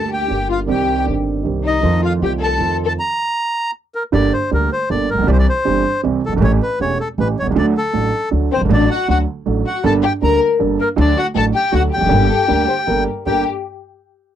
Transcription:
Already playing: grand piano D2 D3 G3 A#3 G4, upright bass D2, bandoneon A5
0.11 violin section G4, bandoneon G5
0.28 grand piano G1 G2 D3 G3 A#3, upright bass G1
0.32 grand piano G4
0.50 violin section F4, bandoneon F5
0.66 grand piano C2 C3 D#3 G3 C4, upright bass C2, violin section G4
0.70 grand piano G4, bandoneon G5
1.04 grand piano G1 G2 D#3 G3 C4, upright bass G1
1.08 grand piano G4
1.42 grand piano C2 C3 D#3 G3 C4, upright bass C2
1.46 grand piano G4
1.64 violin section D#4, bandoneon D#5
1.81 grand piano F2 D#3 F3 A3 C4, upright bass F2
1.85 grand piano F4
2.02 violin section F4, bandoneon F5
2.19 grand piano C2 C3 D#3 A3 C4, upright bass C2, violin section G4
2.23 grand piano F4, bandoneon G5
2.40 violin section A4, bandoneon A5
2.57 grand piano F2 D#3 F3 A3 C4, upright bass F2
2.61 grand piano F4
2.85 violin section A4, bandoneon A5
2.99 bandoneon A#5
3.95 bandoneon A#4
4.12 grand piano G1 G2 D3 G3 A#3 G4, upright bass G1, bandoneon D5
4.33 bandoneon C5
4.51 grand piano D2 D3 G3 A#3 G4, upright bass D2, bandoneon A#4
4.72 bandoneon C5
4.90 upright bass G1, grand piano G1 G2 D3 G3 A#3 G4, bandoneon D5
5.10 grand piano A1, bandoneon A#4
5.14 upright bass A1, grand piano A#1
5.19 upright bass A#1, grand piano B1
5.24 upright bass B1, grand piano C2 C3 E3 G3 C4 G4
5.28 upright bass C2, bandoneon D5
5.32 bandoneon C5
5.39 bandoneon D5
5.49 bandoneon C5
5.65 grand piano G1 G2 E3 G3 C4 G4, upright bass G1
6.03 grand piano C2 C3 E3 G3 C4 G4, upright bass C2
6.26 grand piano F#1, upright bass F#1, bandoneon A4
6.32 grand piano G1, upright bass G1
6.37 grand piano G#1, upright bass G#1
6.41 grand piano A1 A2 E3 A3 C#4 G4, upright bass A1, bandoneon C#5
6.62 bandoneon B4
6.80 upright bass E1, grand piano E1 E2 E3 A3 C#4 G4, bandoneon C#5
7.00 bandoneon A4
7.18 upright bass A1, grand piano A1 A2 E3 A3 C#4 G4, bandoneon B4
7.39 upright bass B1, grand piano B1, bandoneon C#5
7.46 grand piano C2, upright bass C2
7.50 grand piano C#2, upright bass C#2
7.55 grand piano D2 D3 F#3 A3 D4 A4, upright bass D2, bandoneon D5
7.77 bandoneon A4
7.93 grand piano A1 A2 F#3 A3 D4 A4, upright bass A1
8.31 grand piano D2 D3 F#3 A3 D4 A4, upright bass D2
8.52 grand piano F#1, violin section C4, bandoneon C5
8.56 upright bass F#1, grand piano G1
8.61 upright bass G1, grand piano G#1
8.66 upright bass G#1, grand piano A1 A2 F#3 A3 D4 A4
8.71 upright bass A1, violin section D4, bandoneon D5
8.90 violin section F#4, bandoneon F#5
9.08 grand piano D2 D3 F#3 A3 D4 A4, upright bass D2, violin section F#4, bandoneon F#5
9.46 grand piano A1 A2 F#3 A3 D4 A4, upright bass A1
9.65 violin section F#4, bandoneon F#5
9.84 grand piano G1 G2 G3 A#3 D4 A4, upright bass G1, violin section A4, bandoneon A5
10.02 violin section G4, bandoneon G5
10.22 grand piano D2 D3 G3 A#3 D4 A4, upright bass D2, violin section A#4, bandoneon A#5
10.59 grand piano G1 G2 G3 A#3 D4 A4, upright bass G1
10.79 violin section A#3, bandoneon A#4
10.96 grand piano D2 D3 F#3 A3 D4 A4, upright bass D2, violin section D4
11.00 bandoneon D5
11.17 violin section F#4, bandoneon F#5
11.34 grand piano A1 A2 F#3 A3 D4 A4, upright bass A1, violin section A4, bandoneon A5
11.54 violin section G4, bandoneon G5
11.72 grand piano D2 D3 F#3 A3 D4 A4, upright bass D2, violin section F#4, bandoneon F#5
11.92 violin section G4, bandoneon G5
11.96 upright bass E1, grand piano E2
12.01 upright bass F1, grand piano F2
12.05 upright bass F#1, grand piano F#2 G2 G3
12.09 grand piano G1 A#3 D4 A4, upright bass G1
12.30 hollow-body jazz guitar A4
12.48 grand piano D2 D3 G3 A#3 D4 A4, upright bass D2, hollow-body jazz guitar A#4
12.68 hollow-body jazz guitar C5
12.87 grand piano G1 G2 G3 A#3 D4 A4, upright bass G1, hollow-body jazz guitar A#4
13.26 upright bass G1, grand piano G2 A#3 G4 A4, violin section G4, hollow-body jazz guitar A#4, bandoneon G5

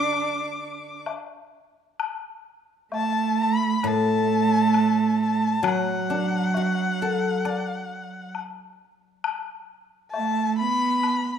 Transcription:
Already playing: guzheng D3, cello D4, erhu D6
0.13 high woodblock
1.06 high woodblock, low woodblock
2.00 high woodblock
2.92 cello A3, erhu A5, low woodblock
3.42 erhu B5
3.83 guzheng A2, cello A3, high woodblock
3.87 erhu A5
4.74 high woodblock
5.22 erhu A5
5.63 guzheng F#3, cello F#3, high woodblock
5.67 erhu F#5
6.10 guzheng D4
6.54 guzheng F#4, low woodblock
7.02 guzheng A4
7.45 guzheng D5, high woodblock
8.35 high woodblock
9.24 high woodblock
10.12 cello A3, erhu A5, low woodblock
10.58 cello B3, erhu B5
11.03 high woodblock

